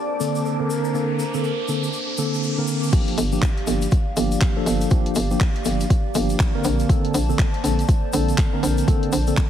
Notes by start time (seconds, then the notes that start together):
Already playing: A#3 D4 C5 D5 A5 D6, riser
0.20 D3 A#3 C4 A4, shaker
0.35 shaker
0.45 A4, shaker
0.60 D3 A#3 C4 A#4
0.70 A#4, shaker
0.84 shaker
0.94 D3 A#3 C4 A4, shaker
1.19 shaker
1.34 D3 A#3 C4 A4, shaker
1.44 shaker
1.68 D3 A#3 C4 A4, shaker
1.83 shaker
1.93 shaker
2.18 D3 A#3 C4 A4, shaker
2.34 shaker
2.43 shaker
2.58 D3 A#3 C4 A#4
2.67 shaker
2.83 shaker
2.92 F3 A#3 D4 G4 D5 F5, kick, closed hi-hat, crash, shaker
3.08 closed hi-hat
3.18 G1, open hi-hat, shaker
3.32 F3 A#3 D4 G4, shaker
3.42 kick, clap, closed hi-hat, shaker
3.57 closed hi-hat
3.67 G1 F3 A#3 D4 G4, open hi-hat, shaker
3.82 closed hi-hat, shaker
3.91 kick, closed hi-hat, shaker
4.16 G1 F3 A#3 D4 G4, open hi-hat, shaker
4.32 closed hi-hat, shaker
4.41 kick, clap, closed hi-hat, shaker
4.56 F3 A#3 D4 A4
4.66 G1, open hi-hat, shaker
4.81 closed hi-hat, shaker
4.90 F3 A#3 D4 G4, kick, closed hi-hat, shaker
5.06 closed hi-hat
5.15 G1, open hi-hat, shaker
5.31 F3 A#3 D4 G4, shaker
5.40 kick, clap, closed hi-hat, shaker
5.56 closed hi-hat
5.65 G1 F3 A#3 D4 G4, open hi-hat, shaker
5.80 closed hi-hat, shaker
5.90 kick, closed hi-hat, shaker
6.15 G1 F3 A#3 D4 G4, open hi-hat, shaker
6.29 closed hi-hat, shaker
6.40 kick, clap, closed hi-hat, shaker
6.55 D3 A#3 C4 A#4
6.64 A#1 C5 D5 A5, open hi-hat, shaker
6.79 closed hi-hat, shaker
6.89 D3 A#3 C4 A4, kick, closed hi-hat, shaker
7.05 closed hi-hat
7.14 A#1, open hi-hat, shaker
7.29 D3 A#3 C4 A4, shaker
7.39 kick, clap, closed hi-hat
7.54 closed hi-hat
7.64 A#1 D3 A#3 C4 A4, open hi-hat, shaker
7.79 closed hi-hat, shaker
7.88 kick, closed hi-hat, shaker
8.13 A#1 D3 A#3 C4 A4, open hi-hat, shaker
8.28 closed hi-hat, shaker
8.38 kick, clap, closed hi-hat, shaker
8.53 D3 A#3 C4 A#4
8.63 A#1, open hi-hat, shaker
8.78 closed hi-hat, shaker
8.88 D3 A#3 C4 A4, kick, closed hi-hat, shaker
9.03 closed hi-hat
9.12 A#1, open hi-hat, shaker
9.27 D3 A#3 C4 A4, closed hi-hat, shaker
9.37 kick, clap, closed hi-hat